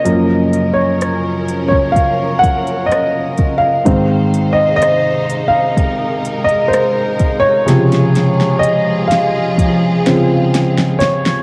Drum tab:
HH |x-x-x-x-x-xxx-x-|x-x-x-x-x-xxx-x-|xxx-x-x-x-x-x-x-|
SD |----r-------r---|----r-------r---|oooo--o---o-oooo|
BD |-------oo-o---o-|o-------o-----o-|--------o-------|